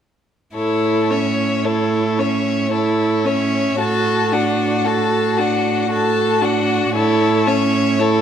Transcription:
0.55 cello A2, viola E4, violin A4 C#5
1.10 viola C#4, violin C#5 E5
1.65 viola E4, violin A4 C#5
2.19 viola C#4, violin C#5 E5
2.72 viola E4, violin A4 C#5
3.25 viola C#4, violin C#5 E5
3.79 cello A2, viola F#4, violin A4 A5
4.32 viola D4, violin F#4 F#5
4.85 viola F#4, violin A4 A5
5.37 viola D4, violin F#4 F#5
5.90 viola F#4, violin A4 A5
6.42 viola D4, violin F#4 F#5
6.93 cello A2, viola E4, violin A4 C#5
7.47 viola C#4, violin C#5 E5
8.00 viola E4, violin A4 C#5

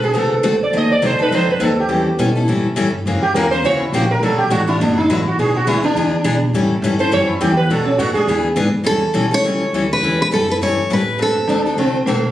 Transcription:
Already playing: upright bass B1
0.02 steel-string acoustic guitar C4 F#4 A4, sitar G#4
0.14 upright bass C2, steel-string acoustic guitar D3 A3 C4 F#4 A4
0.18 sitar A4
0.43 upright bass D2, steel-string acoustic guitar D3 A3 C4 F#4 A4
0.63 sitar D5
0.73 upright bass D#2, steel-string acoustic guitar D#3 F#3 C4 D#4 A4, sitar D#5
0.92 sitar D5
1.02 upright bass C2, steel-string acoustic guitar D#3 F#3 C4 D#4 A4
1.06 sitar C5
1.19 steel-string acoustic guitar C4 D#4 A4, sitar B4, muted upright bass stroke
1.31 upright bass F2, steel-string acoustic guitar D#3 F#3 C4 D#4 A4, sitar C5
1.50 sitar B4
1.60 upright bass D#2, steel-string acoustic guitar D#3 F#3 C4 D#4 A4, sitar A4
1.80 sitar G4
1.89 upright bass E2, steel-string acoustic guitar E3 G3 C#4 E4 A4
2.19 upright bass B2, steel-string acoustic guitar E3 G3 C#4 E4 A4
2.36 steel-string acoustic guitar C#4 E4 A4
2.48 upright bass A2, steel-string acoustic guitar E3 G3 C#4 E4 A4
2.64 muted upright bass stroke
2.76 upright bass G2, steel-string acoustic guitar E3 G3 C#4 E4 A4
3.06 upright bass F#2, steel-string acoustic guitar C#3 E3 A#3 C#4 F#4
3.22 sitar G4, muted upright bass stroke
3.34 upright bass E2, steel-string acoustic guitar C#3 E3 A#3 C#4 F#4, sitar A#4
3.51 steel-string acoustic guitar A#3 C#4 F#4, sitar C5
3.64 upright bass C#2, steel-string acoustic guitar C#3 E3 A#3 C#4 F#4, sitar C#5
3.79 sitar E4
3.92 upright bass A#1, steel-string acoustic guitar C#3 E3 A#3 C#4 F#4, sitar G4
4.11 sitar A#4
4.22 upright bass B1, steel-string acoustic guitar B2 F#3 A3 D4 F#4, sitar A4
4.38 sitar G4
4.50 upright bass A1, steel-string acoustic guitar B2 F#3 A3 D4 F#4, sitar F#4
4.67 steel-string acoustic guitar A3 D4 F#4, sitar E4
4.80 upright bass F#1, steel-string acoustic guitar B2 F#3 A3 D4 F#4, sitar D4
4.98 sitar D#4
5.09 upright bass A1, steel-string acoustic guitar B2 F#3 A3 D4 F#4, sitar E4
5.28 sitar F#4
5.38 upright bass B1, steel-string acoustic guitar E3 B3 D4 G#4, sitar G#4
5.56 sitar F#4
5.67 upright bass D2, steel-string acoustic guitar E3 B3 D4 G#4, sitar E4
5.83 steel-string acoustic guitar B3 D4 G#4, sitar D4
5.95 upright bass E2, steel-string acoustic guitar E3 B3 D4 G#4
6.24 upright bass B2, steel-string acoustic guitar E3 B3 D4 G#4
6.53 upright bass A2, steel-string acoustic guitar E3 G3 C#4 E4 A4
6.82 upright bass G2, steel-string acoustic guitar E3 G3 C#4 E4 A4
6.99 steel-string acoustic guitar C#4 E4 A4, sitar C5
7.12 upright bass F#2, steel-string acoustic guitar E3 G3 C#4 E4 A4, sitar C#5
7.28 sitar E4
7.41 upright bass E2, steel-string acoustic guitar E3 G3 C#4 E4 A4, sitar G4
7.57 sitar B4
7.70 upright bass B2, steel-string acoustic guitar B2 F#3 A3 D4 F#4, sitar A4
7.85 sitar C#4
7.98 upright bass A2, steel-string acoustic guitar B2 F#3 A3 D4 F#4, sitar F#4
8.14 steel-string acoustic guitar A3 D4 F#4, sitar G#4, muted upright bass stroke
8.27 upright bass E2, steel-string acoustic guitar E3 B3 D4 G#4
8.56 upright bass G#2, steel-string acoustic guitar E3 B3 D4 G#4
8.73 muted upright bass stroke
8.84 upright bass E2, steel-string acoustic guitar E3 G3 C#4 E4 A4
9.14 upright bass B1, steel-string acoustic guitar E3 G3 C#4 E4 A4
9.31 steel-string acoustic guitar C#4 E4 A4 C#5, muted upright bass stroke
9.44 upright bass C#2, steel-string acoustic guitar E3 G3 C#4 E4 A4
9.73 upright bass D2, steel-string acoustic guitar E3 G3 C#4 E4 A4
9.93 steel-string acoustic guitar B4
10.02 upright bass E2, steel-string acoustic guitar E3 G3 C#4 E4 A4
10.22 steel-string acoustic guitar B4
10.31 upright bass F#2, steel-string acoustic guitar E3 G3 C#4 E4 A4
10.48 steel-string acoustic guitar C#4 E4 A4 B4
10.61 upright bass G2, steel-string acoustic guitar E3 G3 C#4 E4 A4 C#5
10.90 upright bass A2, steel-string acoustic guitar E3 G3 C#4 E4 A4 B4
11.18 upright bass F#2, steel-string acoustic guitar D3 A3 C4 F#4 A4
11.22 steel-string acoustic guitar A4
11.47 upright bass D2, steel-string acoustic guitar D3 A3 C4 F#4 A4, sitar D4
11.66 steel-string acoustic guitar C4 F#4 A4
11.77 upright bass C2, steel-string acoustic guitar D3 A3 C4 F#4 A4, sitar C4
12.06 upright bass B1, steel-string acoustic guitar D3 A3 C4 F#4 A4, sitar A3

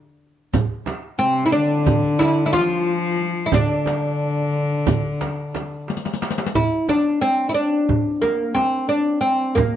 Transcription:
0.54 riq, frame drum, darbuka dum
0.86 riq, darbuka tek, frame drum
1.19 cello C3, oud C4
1.46 oud E4
1.52 cello D3, oud D4, riq
1.86 riq, frame drum, darbuka dum
2.19 oud E4, riq, darbuka tek, frame drum
2.46 oud E4
2.53 cello F3, oud F4, riq, darbuka tek, frame drum
2.87 darbuka ka
3.46 oud E4
3.52 cello D3, oud D4, riq, frame drum, darbuka dum
3.86 riq, darbuka tek, frame drum
4.54 darbuka ka
4.87 riq, frame drum, darbuka dum
5.21 riq, darbuka tek, frame drum
5.55 riq, darbuka tek, frame drum
5.88 riq, darbuka tek
5.97 riq
6.05 riq, darbuka ka
6.14 riq
6.22 riq, darbuka tek
6.31 riq
6.38 riq, darbuka ka
6.46 riq
6.55 oud E4, darbuka dum, frame drum
6.89 oud D4, darbuka tek, frame drum
7.21 oud C4
7.49 oud E4
7.54 oud D4
7.89 frame drum, darbuka dum
8.22 oud A#3, darbuka tek, frame drum
8.54 oud C4, darbuka tek, frame drum
8.89 oud D4, darbuka ka
9.21 oud C4
9.55 oud A#3, darbuka dum, frame drum

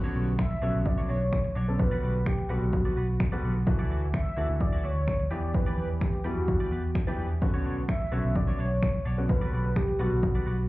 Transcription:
Already playing: grand piano D3 B3 C#4 F#4
0.04 clean electric guitar D4 F#4 C#5
0.15 fingered electric bass B1, clean electric guitar D4 F#4 C#5
0.28 muted clean electric guitar stroke
0.38 soft synth lead E5, finger snap, muted clean electric guitar stroke, kick
0.51 muted clean electric guitar stroke
0.62 fingered electric bass B1, grand piano D3 B3 C#4 F#4, clean electric guitar D4 F#4 C#5
0.74 fingered electric bass B1, muted clean electric guitar stroke
0.85 soft synth lead D5, muted clean electric guitar stroke, kick
0.98 clean electric guitar D4 F#4 C#5
1.09 fingered electric bass B1, clean electric guitar D4 F#4 C#5, soft synth lead C#5
1.21 muted clean electric guitar stroke
1.33 finger snap, kick
1.45 muted clean electric guitar stroke
1.55 fingered electric bass B1, clean electric guitar D4 F#4 C#5, soft synth lead D5
1.68 grand piano D3 B3 C#4 A4, muted clean electric guitar stroke
1.79 grand piano D3 G3 B3 F#4, soft synth lead B4, muted clean electric guitar stroke, kick
1.91 clean electric guitar F#4 B4 D5
2.02 fingered electric bass B1, clean electric guitar F#4 B4 D5, soft synth lead B4
2.15 muted clean electric guitar stroke
2.26 soft synth lead G4, finger snap, muted clean electric guitar stroke, kick
2.38 muted clean electric guitar stroke
2.49 fingered electric bass B1, grand piano D3 G3 B3 F#4, clean electric guitar F#4 B4 D5, soft synth lead F#4
2.62 fingered electric bass B1, muted clean electric guitar stroke
2.73 muted clean electric guitar stroke, kick
2.85 clean electric guitar F#4 B4 D5
2.96 fingered electric bass B1, clean electric guitar F#4 B4 D5
3.09 muted clean electric guitar stroke
3.20 finger snap, muted clean electric guitar stroke, kick
3.32 grand piano D3 G3 B3 F#4, clean electric guitar F#4 B4 D5
3.43 fingered electric bass B1, clean electric guitar F#4 B4 D5
3.56 muted clean electric guitar stroke
3.67 grand piano E3 A3 D4 F#4, muted clean electric guitar stroke, kick
3.79 clean electric guitar E4 F#4 D5
3.90 fingered electric bass D2, clean electric guitar E4 F#4 D5
4.14 soft synth lead E5, finger snap, muted clean electric guitar stroke, kick
4.26 muted clean electric guitar stroke
4.37 fingered electric bass D2, grand piano E3 A3 D4 F#4, clean electric guitar E4 F#4 D5
4.49 fingered electric bass D2, muted clean electric guitar stroke
4.60 soft synth lead D5, muted clean electric guitar stroke, kick
4.73 clean electric guitar E4 F#4 D5
4.84 fingered electric bass D2, clean electric guitar E4 F#4 D5, soft synth lead C#5
4.96 muted clean electric guitar stroke
5.08 finger snap, kick
5.20 muted clean electric guitar stroke
5.31 fingered electric bass E2, grand piano E3 B3 D4 G4, clean electric guitar G4 B4 D5, soft synth lead D5
5.43 muted clean electric guitar stroke
5.54 soft synth lead B4, muted clean electric guitar stroke, kick
5.66 clean electric guitar G4 B4 D5
5.77 fingered electric bass E2, clean electric guitar G4 B4 D5, soft synth lead B4
5.90 muted clean electric guitar stroke
6.01 soft synth lead G4, finger snap, muted clean electric guitar stroke, kick
6.13 muted clean electric guitar stroke
6.24 fingered electric bass E2, grand piano E3 G3 B3 D4, soft synth lead F#4, clean electric guitar G4 B4 D5
6.37 fingered electric bass E2, muted clean electric guitar stroke
6.48 muted clean electric guitar stroke, kick
6.60 clean electric guitar G4 B4 D5
6.71 fingered electric bass E2, clean electric guitar G4 B4 D5
6.84 muted clean electric guitar stroke
6.95 finger snap, muted clean electric guitar stroke, kick
7.07 grand piano E3 B3 D4 G4, clean electric guitar G4 B4 D5
7.18 fingered electric bass E2, clean electric guitar G4 B4 D5
7.31 muted clean electric guitar stroke
7.42 grand piano D3 B3 C#4 F#4, muted clean electric guitar stroke, kick
7.54 clean electric guitar D4 F#4 C#5
7.65 fingered electric bass B1, clean electric guitar D4 F#4 C#5
7.77 muted clean electric guitar stroke
7.89 soft synth lead E5, finger snap, muted clean electric guitar stroke, kick
8.01 muted clean electric guitar stroke
8.12 fingered electric bass B1, grand piano D3 B3 C#4 F#4, clean electric guitar D4 F#4 C#5
8.24 fingered electric bass B1, muted clean electric guitar stroke
8.35 soft synth lead D5, muted clean electric guitar stroke, kick
8.48 clean electric guitar D4 F#4 C#5
8.59 fingered electric bass B1, clean electric guitar D4 F#4 C#5, soft synth lead C#5
8.71 muted clean electric guitar stroke
8.82 finger snap, kick
8.95 muted clean electric guitar stroke
9.05 fingered electric bass B1, clean electric guitar D4 F#4 C#5, soft synth lead D5
9.18 grand piano D3 B3 C#4 F#4, muted clean electric guitar stroke
9.29 grand piano D3 G3 B3 F#4, soft synth lead B4, muted clean electric guitar stroke, kick
9.41 clean electric guitar F#4 B4 D5
9.52 fingered electric bass B1, clean electric guitar F#4 B4 D5, soft synth lead B4
9.65 muted clean electric guitar stroke
9.76 soft synth lead G4, finger snap, muted clean electric guitar stroke, kick
9.88 muted clean electric guitar stroke
9.99 fingered electric bass B1, grand piano D3 G3 B3 F#4, clean electric guitar F#4 B4 D5, soft synth lead F#4
10.12 fingered electric bass B1, muted clean electric guitar stroke
10.23 muted clean electric guitar stroke, kick
10.35 clean electric guitar F#4 B4 D5
10.46 fingered electric bass B1, clean electric guitar F#4 B4 D5
10.59 muted clean electric guitar stroke

